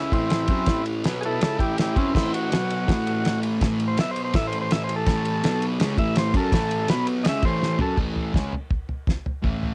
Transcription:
Already playing: distorted electric guitar C#3 G#3 C#4, transistor combo organ E4
0.12 distorted electric guitar A2 E3 A3, transistor combo organ C4 E4, kick, ride
0.30 snare, ride
0.48 distorted electric guitar F#3 C#4 F#4, kick, ride
0.66 distorted electric guitar A2 E3 A3, kick, snare, ride
0.86 ride
1.04 distorted electric guitar B2 F#3 B3, snare, ride
1.21 transistor combo organ G#4, ride
1.25 transistor combo organ E4 A4
1.41 distorted electric guitar C#3 G#3 C#4, transistor combo organ E4 A4, snare, ride
1.58 distorted electric guitar A2 E3 A3, transistor combo organ E4 G4, kick, ride
1.78 transistor combo organ E4 G4, snare, ride
1.96 distorted electric guitar F#3 C#4 F#4, transistor combo organ C4 E4, kick, ride
2.15 distorted electric guitar A2 E3 A3, transistor combo organ C4 E4, kick, snare, crash
2.34 transistor combo organ F#4, ride
2.51 distorted electric guitar B2 F#3 B3, snare, ride
2.70 ride
2.88 distorted electric guitar A2 E3 A3, kick, snare, ride
3.07 ride
3.25 snare, ride
3.43 ride
3.61 distorted electric guitar A2 E3 A3, kick, snare, ride
3.80 ride
3.88 transistor combo organ C5
3.97 distorted electric guitar B2 F#3 B3, transistor combo organ E5, snare, ride
4.11 transistor combo organ C5
4.16 ride
4.25 transistor combo organ C5
4.33 distorted electric guitar A2 E3 A3, transistor combo organ E5, kick, snare, ride
4.47 transistor combo organ C5
4.52 ride
4.61 transistor combo organ C5
4.71 transistor combo organ E5, snare, ride
4.84 transistor combo organ C5
4.89 ride
4.96 transistor combo organ A4
5.06 distorted electric guitar A2 E3 A3, kick, snare, ride
5.25 ride
5.44 distorted electric guitar B2 F#3 B3, snare, ride
5.62 ride
5.80 distorted electric guitar C#3 G#3 C#4, snare, ride
5.98 distorted electric guitar A2 E3 A3, transistor combo organ E5, kick, ride
6.16 transistor combo organ C5, snare, ride
6.34 distorted electric guitar F#3 C#4 F#4, transistor combo organ A4, kick, ride
6.52 distorted electric guitar A2 E3 A3, transistor combo organ A4, kick, snare, ride
6.71 ride
6.88 distorted electric guitar B2 F#3 B3, transistor combo organ B4, snare, ride
7.07 ride
7.24 distorted electric guitar C#3 G#3 C#4, transistor combo organ D#5, snare, ride
7.29 transistor combo organ E5
7.42 distorted electric guitar A2 E3 A3, transistor combo organ C5, kick, ride
7.63 snare
7.79 distorted electric guitar F#3 C#4 F#4, transistor combo organ A4, floor tom
7.97 distorted electric guitar A2 E3 A3, kick, floor tom, crash
8.16 floor tom
8.34 distorted electric guitar C#3 G#3 C#4, kick, snare, floor tom
8.52 floor tom
8.70 kick, floor tom
8.89 floor tom
9.07 kick, snare, floor tom
9.26 floor tom
9.43 distorted electric guitar A2 E3 A3, kick, floor tom
9.63 floor tom

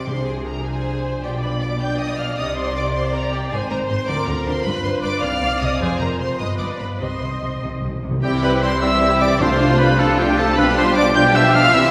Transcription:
Already playing: double bass section C2, cello section C3
0.06 timpani C3, french horn section F3 D4, viola section G#4, violin section C5 C6
0.26 violin section G#4 G#5
0.46 violin section A#4 A#5
0.64 french horn section F3 D4, violin section G#4 G#5, viola section C5
1.23 double bass section B1, cello section B2, french horn section F3 D4, violin section G4 G5, viola section D5
1.43 violin section B4 B5
1.61 violin section D5 D6
1.81 french horn section F3 D4, viola section D5, violin section G5 G6
1.99 violin section D#5 D#6
2.18 violin section F5 F6
2.37 double bass section C2, cello section C3, french horn section D#3 C4, violin section D#5 D#6
2.57 violin section C5 C6
2.75 violin section D5 D6
2.95 french horn section D#3 C4, violin section C5 C6
3.14 violin section A#4 A#5
3.32 violin section G4 G5
3.51 double bass section G#1, cello section G#2, french horn section D#3 C4, violin section G#4 G#5, viola section C5
3.69 double bass section G#1, cello section G#2, violin section A#4 A#5
3.89 double bass section G#1, cello section G#2, violin section C5 C6
4.07 double bass section D2, cello section D3, french horn section F3, viola section A#4, violin section D5 D6
4.26 double bass section D2, cello section D3, violin section A#4 A#5
4.45 double bass section D2, cello section D3, violin section C5 C6
4.64 double bass section G1, cello section G2, french horn section D4, viola section B4, violin section B4 B5
4.84 double bass section G1, cello section G2, violin section C5 C6
5.03 double bass section G1, cello section G2, violin section D5 D6
5.22 double bass section C2, cello section C3, french horn section D#3 C4, viola section D5, violin section F5 F6
5.42 double bass section C2, cello section C3
5.61 double bass section C2, cello section C3, violin section D#5 D#6
5.79 double bass section F1, cello section F2, french horn section F3, violin section G#4 G#5, viola section C5
6.00 double bass section F1, cello section F2, violin section A#4 A#5
6.19 double bass section F1, cello section F2, violin section C5 C6
6.39 double bass section G1, cello section G2, french horn section B3, viola section B4, violin section D#5 D#6
6.59 double bass section G1, cello section G2, violin section D5 D6
6.79 double bass section G1, cello section G2, violin section B4 B5
7.00 double bass section C2, cello section C3, timpani C3, french horn section D#3 C4, violin section C5 C6, viola section D#5
7.09 timpani C3
7.17 timpani C3
7.21 double bass section C2, cello section C3, timpani C3
7.32 timpani C3
7.41 double bass section C2, cello section C3
7.48 timpani C3
7.56 timpani C3
7.62 double bass section C2, cello section C3, timpani C3
7.72 timpani C3
7.80 double bass section C2, timpani C3, cello section C3
7.87 timpani C3
7.96 timpani C3
8.03 double bass section C2, cello section C3, timpani C3
8.11 timpani C3
8.23 double bass section C2, cello section C3, french horn section E3 C4, viola section G3 C4, bassoon G3, clarinet C4, violin section E4 G4 G5, flute section G4, oboe G4, trumpet G4
8.43 bassoon G3, clarinet C4, flute section B4, oboe B4, trumpet B4, violin section B5
8.62 bassoon G3, clarinet C4, oboe C5, flute section C5, trumpet C5, violin section C6
8.81 french horn section E3 C4, bassoon G3, viola section G3 C4, clarinet C4, violin section E4 G4 E6, flute section E5, oboe E5, trumpet E5
9.01 bassoon G3, clarinet C4
9.21 bassoon G3, clarinet C4, flute section D5, oboe D5, trumpet D5, violin section D6
9.40 double bass section C2, timpani C3, cello section C3, french horn section F3 D4, bassoon F3, viola section A3 D4, clarinet D4, violin section F4 C6, oboe C5, flute section C5, trumpet C5
9.60 bassoon F3, clarinet D4
9.79 bassoon F3, clarinet D4, oboe B4, flute section B4, trumpet B4, violin section B5
9.99 french horn section F3 D4, bassoon F3, viola section A3 D4, clarinet D4, violin section F4 A5, oboe A4, trumpet A4, flute section A4
10.18 bassoon F3, clarinet D4, oboe G4, flute section G4, trumpet G4, violin section G5
10.37 bassoon F3, clarinet D4, flute section A4, oboe A4, trumpet A4, violin section A5
10.57 double bass section B1, cello section B2, bassoon F3, french horn section F3 D4, viola section G3 D4, clarinet D4, violin section F4 G4 B5, oboe B4, flute section B4, trumpet B4
10.76 bassoon F3, clarinet D4, flute section C5, oboe C5, trumpet C5, violin section C6
10.96 bassoon F3, clarinet D4, oboe D5, flute section D5, trumpet D5, violin section D6
11.15 french horn section F3 D4, bassoon F3, viola section G3 D4, clarinet D4, violin section F4 G4 G6, oboe G5, flute section G5, trumpet G5
11.34 bassoon F3, clarinet D4, flute section E5, oboe E5, trumpet E5, violin section E6
11.44 viola section F3
11.53 bassoon F3, clarinet D4, oboe F5, trumpet F5, flute section F5, violin section F6
11.73 double bass section C2, cello section C3, french horn section E3 C4, viola section E3 C4, bassoon E3, clarinet C4, violin section E4 G4 E6, oboe E5, trumpet E5, flute section E5

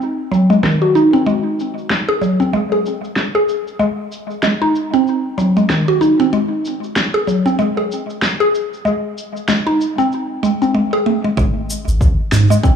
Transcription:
Already playing: synth pluck C4
0.01 shaker
0.32 synth pluck F#3, shaker
0.50 synth pluck G#3, shaker
0.63 synth pluck D#3, snare, shaker
0.82 synth pluck F#4
0.95 synth pluck D#4, shaker
1.13 synth pluck C4, shaker
1.26 synth pluck G#3, shaker
1.60 shaker
1.78 shaker
1.90 snare, shaker
2.09 synth pluck G#4
2.21 synth pluck F#3, shaker
2.40 synth pluck C4, shaker
2.53 synth pluck G#3, shaker
2.72 synth pluck G#4
2.86 shaker
3.04 shaker
3.16 snare, shaker
3.35 synth pluck G#4
3.49 shaker
3.67 shaker
3.79 synth pluck G#3, shaker
4.12 shaker
4.30 shaker
4.43 synth pluck G#3, snare, shaker
4.62 synth pluck D#4
4.75 shaker
4.94 synth pluck C4, shaker
5.07 shaker
5.38 synth pluck F#3, shaker
5.57 synth pluck G#3, shaker
5.70 synth pluck D#3, snare, shaker
5.88 synth pluck F#4
6.01 synth pluck D#4, shaker
6.20 synth pluck C4, shaker
6.33 synth pluck G#3, shaker
6.65 shaker
6.84 shaker
6.96 snare, shaker
7.14 synth pluck G#4
7.27 synth pluck F#3, shaker
7.46 synth pluck C4, shaker
7.59 synth pluck G#3, shaker
7.77 synth pluck G#4
7.92 shaker
8.10 shaker
8.22 snare, shaker
8.40 synth pluck G#4
8.55 shaker
8.73 shaker
8.85 synth pluck G#3, shaker
9.18 shaker
9.37 shaker
9.48 synth pluck G#3, snare, shaker
9.67 synth pluck D#4
9.81 shaker
9.98 synth pluck C4, shaker
10.12 shaker
10.43 synth pluck G#3, shaker
10.62 synth pluck C4, shaker
10.74 synth pluck G#3
10.93 synth pluck G#4
11.06 synth pluck A3
11.24 synth pluck G#3
11.37 sub bass G#1, synth pluck G#3, kick, shaker
11.70 shaker
11.87 sub bass G#1, shaker
12.01 kick, shaker
12.32 sub bass G#2, synth pluck G#3, snare, shaker
12.50 synth pluck G#3, shaker
12.63 synth pluck C4, kick, shaker

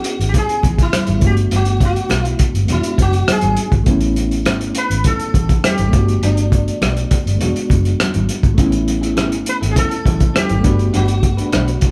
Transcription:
Already playing: reed electric piano B3 C#4 E4 G#4, sitar F#4
0.04 closed hi-hat
0.20 fingered electric bass G#1, closed hi-hat
0.29 sitar G4
0.34 sitar G#4, kick, closed hi-hat, muted conga, low conga
0.49 closed hi-hat
0.63 fingered electric bass A1, kick, closed hi-hat, muted conga, low conga
0.78 sitar E4, kick, closed hi-hat
0.93 cross-stick, closed hi-hat, high conga
1.07 fingered electric bass G#1, closed hi-hat, high conga
1.18 reed electric piano A3 B3, closed hi-hat
1.22 fingered electric bass G1, reed electric piano D4 F#4, kick
1.26 sitar G4
1.37 closed hi-hat
1.51 fingered electric bass G1, closed hi-hat, muted conga
1.56 sitar F#4
1.65 closed hi-hat
1.80 kick, closed hi-hat
1.85 sitar F#4
1.96 closed hi-hat
2.09 fingered electric bass B1, cross-stick, closed hi-hat, high conga
2.25 sitar E4, closed hi-hat
2.39 kick, closed hi-hat
2.54 fingered electric bass G1, closed hi-hat
2.65 fingered electric bass E1, reed electric piano G#3 B3, closed hi-hat
2.70 reed electric piano D4 F#4, sitar E4, muted conga, low conga
2.83 closed hi-hat
2.98 fingered electric bass F#1, sitar F#4, kick, closed hi-hat, muted conga
3.13 closed hi-hat
3.28 sitar G#4, cross-stick, closed hi-hat, high conga
3.41 fingered electric bass G#1, closed hi-hat, high conga
3.57 closed hi-hat
3.72 fingered electric bass G#1, kick, closed hi-hat
3.83 fingered electric bass A1, reed electric piano A3 B3, kick, closed hi-hat
3.88 reed electric piano C#4 E4, muted conga
4.01 closed hi-hat
4.16 closed hi-hat, muted conga
4.31 closed hi-hat
4.46 fingered electric bass G#1, cross-stick, closed hi-hat, high conga
4.61 closed hi-hat
4.75 sitar B4, closed hi-hat
4.90 fingered electric bass G#1, closed hi-hat
5.04 sitar A4, kick, closed hi-hat, muted conga, low conga
5.19 closed hi-hat
5.34 fingered electric bass A1, kick, closed hi-hat, muted conga, low conga
5.49 kick, closed hi-hat
5.64 sitar G4, cross-stick, closed hi-hat, high conga
5.78 fingered electric bass G#1, closed hi-hat, high conga
5.89 reed electric piano A3 B3, closed hi-hat
5.93 fingered electric bass G1, reed electric piano D4 F#4, kick, cross-stick
6.08 closed hi-hat
6.22 fingered electric bass G1, sitar D4, closed hi-hat, muted conga
6.37 closed hi-hat
6.52 kick, closed hi-hat
6.68 closed hi-hat
6.82 fingered electric bass B1, cross-stick, closed hi-hat, high conga
6.97 closed hi-hat
7.11 kick, closed hi-hat
7.26 fingered electric bass G1, closed hi-hat
7.36 reed electric piano G#3 B3
7.41 fingered electric bass E1, reed electric piano D4 F#4, closed hi-hat, muted conga, low conga
7.56 closed hi-hat
7.70 fingered electric bass F#1, kick, closed hi-hat, muted conga, low conga
7.85 closed hi-hat
8.00 cross-stick, closed hi-hat, high conga
8.14 fingered electric bass G#1, closed hi-hat, high conga
8.29 cross-stick, closed hi-hat
8.43 fingered electric bass G#1, kick, closed hi-hat
8.55 fingered electric bass A1, reed electric piano A3 B3, clean electric guitar C#4, kick, closed hi-hat
8.59 reed electric piano C#4 E4, clean electric guitar E4 G#4, muted conga
8.72 muted clean electric guitar stroke, closed hi-hat
8.87 muted clean electric guitar stroke, closed hi-hat, muted conga
9.01 clean electric guitar C#4 E4 G#4, closed hi-hat
9.16 fingered electric bass G#1, clean electric guitar C#4 E4 G#4, cross-stick, closed hi-hat, high conga
9.32 closed hi-hat
9.46 sitar B4, muted clean electric guitar stroke, closed hi-hat
9.61 fingered electric bass G#1, clean electric guitar C#4 E4 A4, closed hi-hat
9.71 sitar G#4
9.75 clean electric guitar C#4 E4 A4, sitar A4, kick, closed hi-hat, muted conga, low conga
9.91 muted clean electric guitar stroke, closed hi-hat
10.05 fingered electric bass A1, clean electric guitar C#4 E4 G#4, kick, closed hi-hat, muted conga, low conga
10.20 muted clean electric guitar stroke, kick, closed hi-hat
10.34 clean electric guitar C#4 E4 G#4, sitar G4, cross-stick, closed hi-hat, high conga
10.49 fingered electric bass G#1, muted clean electric guitar stroke, closed hi-hat, high conga
10.60 reed electric piano A3 B3, clean electric guitar D4
10.64 fingered electric bass G1, reed electric piano D4 F#4, clean electric guitar F#4 B4, kick, cross-stick, closed hi-hat
10.78 muted clean electric guitar stroke, closed hi-hat
10.93 fingered electric bass G1, clean electric guitar D4 F#4 B4, sitar F#4, closed hi-hat, muted conga
11.08 muted clean electric guitar stroke, closed hi-hat
11.23 muted clean electric guitar stroke, kick, closed hi-hat
11.37 clean electric guitar D4 F#4 B4, closed hi-hat
11.52 fingered electric bass B1, clean electric guitar D4 F#4 B4, cross-stick, closed hi-hat, high conga
11.68 closed hi-hat
11.81 muted clean electric guitar stroke, kick, closed hi-hat

